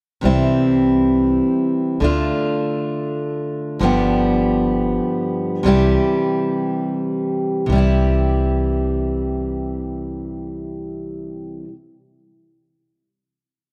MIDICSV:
0, 0, Header, 1, 3, 480
1, 0, Start_track
1, 0, Key_signature, 0, "major"
1, 0, Tempo, 500000
1, 13175, End_track
2, 0, Start_track
2, 0, Title_t, "Steel-string acoustic guitar"
2, 0, Program_c, 0, 25
2, 204, Note_on_c, 0, 48, 71
2, 219, Note_on_c, 0, 52, 68
2, 229, Note_on_c, 0, 55, 67
2, 241, Note_on_c, 0, 60, 76
2, 245, Note_on_c, 0, 64, 80
2, 1918, Note_off_c, 0, 52, 0
2, 1922, Note_on_c, 0, 50, 76
2, 1927, Note_off_c, 0, 48, 0
2, 1934, Note_off_c, 0, 55, 0
2, 1938, Note_on_c, 0, 57, 74
2, 1945, Note_off_c, 0, 60, 0
2, 1947, Note_off_c, 0, 64, 0
2, 1955, Note_on_c, 0, 62, 76
2, 1963, Note_on_c, 0, 65, 84
2, 3642, Note_off_c, 0, 50, 0
2, 3642, Note_on_c, 0, 43, 77
2, 3653, Note_on_c, 0, 50, 73
2, 3655, Note_off_c, 0, 57, 0
2, 3659, Note_on_c, 0, 53, 77
2, 3664, Note_off_c, 0, 62, 0
2, 3668, Note_off_c, 0, 65, 0
2, 3673, Note_on_c, 0, 55, 85
2, 3677, Note_on_c, 0, 59, 85
2, 3684, Note_on_c, 0, 67, 86
2, 5401, Note_off_c, 0, 50, 0
2, 5405, Note_on_c, 0, 48, 72
2, 5415, Note_off_c, 0, 43, 0
2, 5415, Note_off_c, 0, 53, 0
2, 5418, Note_on_c, 0, 52, 80
2, 5426, Note_off_c, 0, 55, 0
2, 5430, Note_on_c, 0, 55, 83
2, 5432, Note_off_c, 0, 59, 0
2, 5437, Note_on_c, 0, 64, 80
2, 5444, Note_off_c, 0, 67, 0
2, 5447, Note_on_c, 0, 67, 87
2, 7343, Note_off_c, 0, 48, 0
2, 7355, Note_on_c, 0, 48, 66
2, 7377, Note_off_c, 0, 52, 0
2, 7388, Note_off_c, 0, 55, 0
2, 7389, Note_on_c, 0, 52, 69
2, 7391, Note_off_c, 0, 64, 0
2, 7397, Note_off_c, 0, 67, 0
2, 7414, Note_on_c, 0, 55, 71
2, 7443, Note_on_c, 0, 64, 76
2, 7467, Note_on_c, 0, 67, 81
2, 11176, Note_off_c, 0, 48, 0
2, 11210, Note_off_c, 0, 52, 0
2, 11235, Note_off_c, 0, 55, 0
2, 11264, Note_off_c, 0, 64, 0
2, 11288, Note_off_c, 0, 67, 0
2, 13175, End_track
3, 0, Start_track
3, 0, Title_t, "Upright bass"
3, 0, Program_c, 1, 32
3, 226, Note_on_c, 1, 36, 68
3, 1327, Note_off_c, 1, 36, 0
3, 1930, Note_on_c, 1, 38, 77
3, 2204, Note_off_c, 1, 38, 0
3, 3653, Note_on_c, 1, 31, 74
3, 4779, Note_off_c, 1, 31, 0
3, 5420, Note_on_c, 1, 36, 73
3, 5714, Note_off_c, 1, 36, 0
3, 7380, Note_on_c, 1, 36, 69
3, 11162, Note_off_c, 1, 36, 0
3, 13175, End_track
0, 0, End_of_file